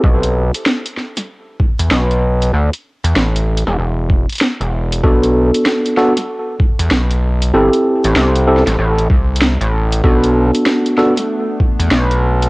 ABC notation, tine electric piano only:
X:1
M:4/4
L:1/8
Q:"Swing 16ths" 1/4=96
K:Bphr
V:1 name="Tine electric piano"
z8 | z8 | [B,DFA]3 [B,DFA] z4 | [CEGA]3 [CEGA] z4 |
[B,DFA]3 [B,DFA] z4 |]